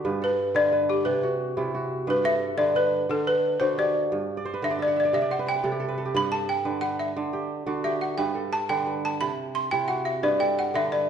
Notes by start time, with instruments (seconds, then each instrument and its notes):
Already playing: kora F#4 G4
0.05 kora G2 B4
0.22 kora A4, balafon B4
0.55 kora D3 B4, balafon D5
0.72 kora B4
0.90 balafon G4
1.05 kora C3, balafon B4
1.23 kora F#4
1.57 kora C3 E4
1.75 kora F#4
2.07 kora G2 B4, balafon B4
2.24 kora A4, balafon E5
2.57 kora D3 B4, balafon D5
2.75 kora B4, balafon B4
3.09 kora D3, balafon A4
3.27 balafon B4
3.60 kora D3 F#4, balafon C5
3.78 kora G4, balafon D5
4.12 kora G2
4.37 kora D5
4.45 kora C5
4.54 kora B4
4.62 kora D3 C5, balafon E5
4.71 kora D5
4.79 balafon D5, kora E5
4.87 kora F#5
4.96 balafon D5, kora E5
5.05 kora D5
5.13 kora C3 E5, balafon E5
5.22 kora D5
5.31 kora C5, balafon F#5
5.39 kora B4
5.47 kora C5, balafon G5
5.56 kora B4
5.64 kora C3 A4
5.72 kora G4
5.80 kora A4
5.89 kora B4
5.98 kora A4
6.05 kora G4
6.15 kora G2 B4, balafon B5
6.32 kora A4, balafon A5
6.49 balafon G5
6.65 kora D3 B4
6.81 kora B4, balafon F#5
7.00 balafon E5
7.16 kora D3
7.33 kora G4
7.66 kora D3 F#4
7.84 kora G4, balafon E5
8.01 balafon F#5
8.18 kora G2 B4, balafon G5
8.35 kora A4
8.53 balafon A5
8.69 kora D3 B4, balafon G5
8.87 kora B4
9.05 balafon A5
9.21 kora C3, balafon B5
9.55 balafon C6
9.71 kora C3 E4, balafon G5
9.88 kora F#4, balafon F#5
10.05 balafon E5
10.23 kora G2 B4, balafon D5
10.40 kora A4, balafon G5
10.59 balafon F#5
10.74 kora D3 B4, balafon E5
10.92 kora B4, balafon D5